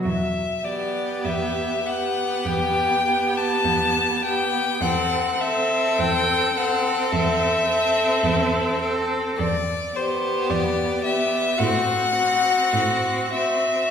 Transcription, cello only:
X:1
M:4/4
L:1/8
Q:1/4=52
K:Em
V:1 name="Cello" clef=bass
E,,2 E,,2 E,,2 E,,2 | E,,2 E,,2 E,,2 E,,2 | E,,2 E,,2 A,,2 A,,2 |]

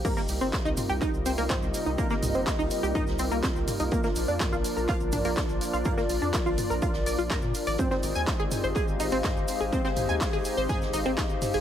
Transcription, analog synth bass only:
X:1
M:4/4
L:1/16
Q:1/4=124
K:Cm
V:1 name="Analog synth bass" clef=bass
z2 C,, G,,, z C,, z C,, z C,, C,, C,, z C,, z C,, | z2 C,, G,,, z C,, z C,, z C,, C,, C,, z C,, z C,, | z2 B,,, F,, z B,,, z B,,, z B,,, B,,, B,,, z B,,, z B,,, | z2 B,,, F,, z B,,, z B,,, z B,,, B,,, B,,, z B,, z A,,, |
z2 A,,, E,, z A,,, z A,,, z A,,, A,,, A,,, z A,,, z A,,, | z2 A,,, E,, z A,,, z A,,, z A,,, A,,, A,,, z A,,, z A,,, |]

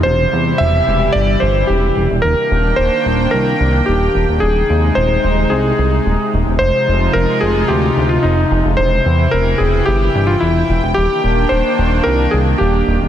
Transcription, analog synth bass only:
X:1
M:4/4
L:1/16
Q:1/4=110
K:Cm
V:1 name="Analog synth bass" clef=bass
=E,,,2 =E,,2 E,,,2 E,,,2 G,,,2 G,,,2 E,,,2 E,,, E,,, | E,,, z E,,,2 E,,, z E,,,2 C,,2 C,,2 E,,,2 E,,, E,,, | E,,,2 E,,2 E,,,2 E,,,2 C,,2 C,,2 E,,, z E,,, E,,, | F,,, z F,,,2 F,,, z F,,,2 D,,2 D,,2 F,,,2 F,,, F,,, |
=E,,,2 =E,,2 E,,,2 E,,,2 G,,,2 G,,,2 E,,,2 E,,, E,,, | E,,, z E,,,2 E,,, z E,,,2 C,,2 C,,2 E,,,2 E,,, E,,, |]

